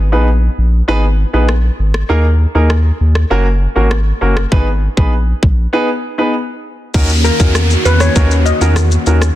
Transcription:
Already playing: sub bass G#1
0.12 sub bass A#1, grand piano B3 D#4 G#4 B4
0.58 sub bass A#1
0.88 sub bass G#1, grand piano B3 D#4 G#4 B4
1.33 sub bass A#1, grand piano B3 D#4 G#4 B4
1.49 cross-stick
1.79 sub bass G#1
1.94 cross-stick
2.09 sub bass D#2, grand piano A#3 D#4 G#4 A#4
2.55 sub bass D#2, grand piano A#3 D#4 G#4 A#4
2.70 cross-stick
3.01 sub bass D#2
3.15 cross-stick
3.30 sub bass F#1, grand piano A#3 C#4 F#4 A#4
3.76 sub bass G#1, grand piano A#3 C#4 F#4 A#4
3.91 cross-stick
4.21 sub bass F#1, grand piano A#3 C#4 F#4 A#4
4.37 cross-stick
4.52 sub bass G#1, grand piano B3 D#4 G#4 B4, kick
4.97 sub bass A#1, grand piano B3 D#4 G#4 B4, kick
5.43 sub bass A#1, kick
5.73 grand piano B3 D#4 G#4 B4
6.18 grand piano B3 D#4 G#4 B4
6.94 sub bass D#2, analog synth pad D#3 A#3 C#4 F#4, grand piano C#4 D#4 F#4 A#4, kick, crash, downlifter, shaker
7.09 shaker
7.24 steel pan A#4, shaker
7.39 sub bass E2, grand piano C#4 D#4 F#4 A#4, kick, shaker
7.55 cross-stick, shaker
7.70 shaker
7.85 sub bass E2, steel pan B4, shaker
8.00 steel pan C#5, cross-stick, shaker
8.15 sub bass D#2, grand piano C#4 D#4 F#4 A#4, kick, shaker
8.31 shaker
8.46 steel pan D#5, shaker
8.61 sub bass E2, grand piano C#4 D#4 F#4 A#4, shaker
8.76 cross-stick, shaker
8.91 shaker
9.06 sub bass D#2, grand piano C#4 D#4 F#4 A#4, shaker
9.22 cross-stick, shaker

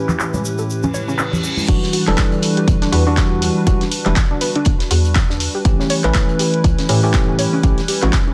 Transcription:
Already playing: analog synth pad A2 C#4 E4 G4 B4, tine electric piano E3 A3 C#4 G4
0.09 clap, low conga, shaker
0.20 clap, shaker
0.34 synth pluck C#4, high conga, shaker
0.45 shaker
0.58 synth pluck A4, shaker
0.69 reverse cymbal, shaker
0.83 synth pluck C#4, low conga, shaker
0.94 synth pluck C#5, high conga, shaker
1.08 synth pluck C#4, shaker
1.19 synth pluck C#4, clap, shaker
1.33 low conga, shaker
1.44 synth pluck G4, shaker
1.57 high conga, shaker
1.68 fm bass E1, tine electric piano E3 G3 D4 F#4, analog synth pad G3 D4 F#4 B4, synth pluck D4, kick, closed hi-hat, crash
1.83 snare
1.93 synth pluck F#4, closed hi-hat, open hi-hat
2.07 fm bass E1, tine electric piano E3 G3 D4 A4, clap, closed hi-hat
2.18 kick, snare, clap, closed hi-hat
2.32 synth pluck D4, closed hi-hat
2.42 closed hi-hat, open hi-hat
2.57 synth pluck G4, closed hi-hat
2.68 fm bass G1, kick, closed hi-hat
2.82 synth pluck D4, snare, closed hi-hat
2.92 fm bass E2, tine electric piano E3 G3 D4 F#4, synth pluck B4, open hi-hat
3.07 tine electric piano E3 G3 D4 F#4, synth pluck D4
3.17 kick, snare, clap, closed hi-hat
3.42 synth pluck F#4, closed hi-hat, open hi-hat
3.67 fm bass E1, tine electric piano E3 G3 D4 F#4, kick, closed hi-hat
3.81 synth pluck D4, snare, closed hi-hat
3.91 closed hi-hat, open hi-hat
4.06 fm bass E1, tine electric piano E3 G3 D4 E4, synth pluck G4, clap, closed hi-hat
4.16 kick, snare, clap, closed hi-hat
4.31 synth pluck D4
4.41 synth pluck B4, closed hi-hat, open hi-hat
4.55 synth pluck D4, closed hi-hat
4.65 fm bass G1, synth pluck D4, kick, closed hi-hat
4.80 snare, closed hi-hat
4.91 fm bass E2, synth pluck F#4, closed hi-hat, open hi-hat
5.05 closed hi-hat
5.15 kick, snare, clap, closed hi-hat
5.30 synth pluck D4, snare
5.40 closed hi-hat, open hi-hat
5.55 synth pluck G4
5.65 fm bass A1, tine electric piano E3 A3 C#4 G4, analog synth pad G3 C#4 E4 B4, kick, closed hi-hat
5.80 synth pluck C#4, snare
5.90 synth pluck C#5, closed hi-hat, open hi-hat
6.04 fm bass A1, tine electric piano E3 A3 C#4 B4, synth pluck C#4, clap, closed hi-hat
6.14 synth pluck C#4, kick, snare, clap, closed hi-hat
6.29 closed hi-hat
6.39 synth pluck G4, closed hi-hat, open hi-hat
6.54 closed hi-hat
6.64 fm bass C#2, kick, closed hi-hat
6.78 synth pluck C#4, snare, closed hi-hat
6.89 fm bass A2, tine electric piano E3 A3 C#4 G4, closed hi-hat, open hi-hat
7.03 tine electric piano E3 A3 C#4 G4, synth pluck A4
7.14 kick, snare, clap, closed hi-hat
7.28 synth pluck C#4
7.39 synth pluck C#5, closed hi-hat, open hi-hat
7.53 synth pluck C#4
7.63 fm bass A1, tine electric piano E3 A3 C#4 G4, synth pluck C#4, kick, closed hi-hat
7.78 snare, closed hi-hat
7.88 synth pluck G4, closed hi-hat, open hi-hat
8.02 fm bass A1, tine electric piano E3 A3 C#4 F#4, clap, closed hi-hat
8.12 kick, snare, clap, closed hi-hat
8.27 synth pluck C#4

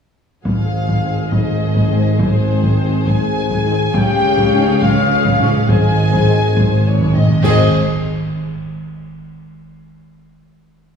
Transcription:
0.44 tuba G#1, double bass section G#1, cello section G#2, viola section G#3 G#4, french horn section F4, violin section C5 F5 G#5, trumpet section F5, taiko
0.89 taiko
1.02 trombone section G#2 C4
1.32 french horn section D#4, trumpet section D#5, violin section D#5, taiko
1.76 taiko
1.89 trombone section G#2 C4
2.19 french horn section C4, trumpet section C5, violin section C5, taiko
2.63 taiko
2.79 trombone section G#2 C4
3.06 french horn section G#4, trumpet section G#5, violin section G#5, taiko
3.51 taiko
3.65 trombone section G#2 C4
3.92 double bass section C#2, tuba C#2, cello section C#3, viola section G#3 G#4, violin section C#5 F5 G5, trumpet section G5, taiko
3.96 french horn section G4
4.38 taiko
4.54 trombone section G#2 C#4
4.81 french horn section F4, trumpet section F5, violin section F5, taiko
5.25 taiko
5.39 trombone section G#2 C#4, taiko low-mid
5.54 taiko low-mid
5.68 double bass section G#1, tuba G#1, cello section G#2, french horn section G#4, violin section C5 D#5 G#5, trumpet section G#5, taiko
5.84 timpani G#2
6.00 timpani G#2
6.08 timpani G#2
6.13 timpani G#2, taiko
6.22 timpani G#2, trombone section G#2
6.27 timpani G#2, trombone section C4
6.38 timpani G#2
6.44 timpani G#2
6.51 timpani G#2
6.56 timpani G#2, violin section C5, taiko
6.65 timpani G#2
6.73 timpani G#2
6.81 timpani G#2
6.86 timpani G#2, violin section C#5
6.96 timpani G#2
7.01 timpani G#2, taiko
7.12 timpani G#2, trombone section G#2 C4, violin section D#5, taiko low-mid
7.20 timpani G#2
7.27 timpani G#2, taiko low-mid
7.36 timpani G#2
7.43 tuba G#1, double bass section G#1, trombone section G#2 C4, timpani G#2, cello section G#2, viola section G#3 G#4, trumpet section G#4, french horn section G#4, violin section C5 D#5 G#5, concert bass drum, taiko low, crash

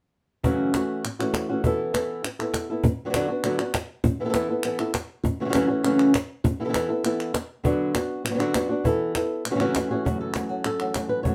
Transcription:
0.43 nylon-string guitar F#2 C#3 E3 A3 C#4 F#4, cajon bass
0.74 nylon-string guitar E3 A3 C#4 F#4, cajon slap, clap
1.04 muted nylon-string guitar stroke, clap
1.19 nylon-string guitar E3 A3 C#4 F#4, cajon slap, clap
1.34 cajon slap, clap
1.49 nylon-string guitar E3 A3 C#4 F#4
1.64 nylon-string guitar E3 B3 E4 A4, cajon bass
1.94 nylon-string guitar E3 B3 E4 A4, cajon slap, clap
2.24 muted nylon-string guitar stroke, clap
2.39 nylon-string guitar B3 E4 A4, clap
2.54 cajon slap, clap
2.70 nylon-string guitar B3 E4 A4
2.84 muted nylon-string guitar stroke, cajon bass
2.99 cajon slap
3.05 nylon-string guitar F#3 B3 D4 F#4
3.10 nylon-string guitar F#3 B3 D4 F#4
3.14 nylon-string guitar D3 F#3 B3 D4 F#4, cajon slap, clap
3.28 nylon-string guitar B3 D4 F#4
3.44 nylon-string guitar D3 F#3 B3 D4 F#4, cajon slap, clap
3.58 nylon-string guitar B3 D4 F#4, clap
3.74 muted nylon-string guitar stroke, cajon slap, clap
4.04 muted nylon-string guitar stroke, cajon bass
4.20 nylon-string guitar E3 B3 E4 A4
4.25 nylon-string guitar E3 B3 E4 A4
4.29 nylon-string guitar E3 B3 E4 A4
4.34 nylon-string guitar E3 B3 E4 A4, cajon slap, clap
4.49 nylon-string guitar B3 E4 A4
4.63 nylon-string guitar E3 B3 E4 A4, clap
4.79 nylon-string guitar B3 E4 A4, cajon slap, clap
4.94 muted nylon-string guitar stroke, cajon slap, clap
5.24 muted nylon-string guitar stroke, cajon bass
5.40 nylon-string guitar C#3 E3 A3 C#4 F#4, cajon slap
5.45 nylon-string guitar C#3 E3 A3 C#4 F#4
5.49 nylon-string guitar C#3 E3 A3 C#4 F#4, clap
5.54 nylon-string guitar F#2 C#3 E3 A3 C#4 F#4, cajon slap
5.68 nylon-string guitar E3 A3 C#4 F#4
5.83 nylon-string guitar F#2 C#3 E3 A3 C#4 F#4, clap
5.99 cajon slap, clap
6.14 muted nylon-string guitar stroke, cajon slap, clap
6.44 muted nylon-string guitar stroke, cajon bass
6.60 nylon-string guitar E3 B3 E4 A4
6.64 nylon-string guitar E3 B3 E4 A4
6.69 nylon-string guitar E3 B3 E4 A4
6.73 nylon-string guitar E3 B3 E4 A4, cajon slap, clap
6.89 nylon-string guitar B3 E4 A4
7.04 nylon-string guitar E3 B3 E4 A4, clap
7.20 cajon slap, clap
7.34 muted nylon-string guitar stroke, cajon slap, clap
7.64 nylon-string guitar D3 F#3 B3 D4 F#4, cajon bass
7.81 cajon slap
7.94 nylon-string guitar B3 D4 F#4, cajon slap, clap
8.25 muted nylon-string guitar stroke, clap
8.29 nylon-string guitar F#3 B3 D4 F#4
8.34 nylon-string guitar F#3 B3 D4 F#4
8.38 nylon-string guitar D3 F#3 B3 D4 F#4, cajon slap, clap
8.54 nylon-string guitar F#3 B3 D4 F#4, cajon slap, clap
8.69 nylon-string guitar B3 D4 F#4
8.84 nylon-string guitar E3 B3 E4 A4, cajon bass
9.15 nylon-string guitar B3 E4 A4, cajon slap, clap
9.45 muted nylon-string guitar stroke, clap
9.50 nylon-string guitar C#3 E3 A3 C#4 F#4
9.55 nylon-string guitar C#3 E3 A3 C#4 F#4
9.60 nylon-string guitar F#2 C#3 E3 A3 C#4 F#4, clap
9.74 nylon-string guitar E3 A3 C#4 F#4, cajon slap, clap
9.91 nylon-string guitar E3 A3 C#4 F#4 G#4
10.04 nylon-string guitar F#2 C#3 E3 A3 C#4 F#4, cajon bass
10.20 nylon-string guitar F#3 A4
10.34 nylon-string guitar E3 A3 C#4 F#4 G#4, cajon slap, clap
10.49 nylon-string guitar E3 A3 C#4 F#4
10.64 nylon-string guitar A4, muted nylon-string guitar stroke, clap
10.80 nylon-string guitar E3 A3 C#4 F#4, clap
10.94 nylon-string guitar E3 A3 C#4 F#4, cajon slap, clap
11.09 nylon-string guitar B4
11.23 nylon-string guitar F#2 C#3 E3 A3 C#4 F#4 C#5, cajon bass

